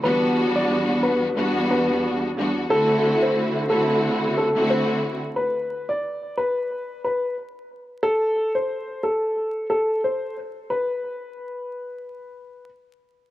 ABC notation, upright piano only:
X:1
M:4/4
L:1/16
Q:"Swing 16ths" 1/4=90
K:Em
V:1 name="Upright piano"
B3 d3 B4 B2 z4 | A3 c3 A4 A2 c2 z2 | B3 d3 B4 B2 z4 | A3 c3 A4 A2 c2 z2 |
B12 z4 |]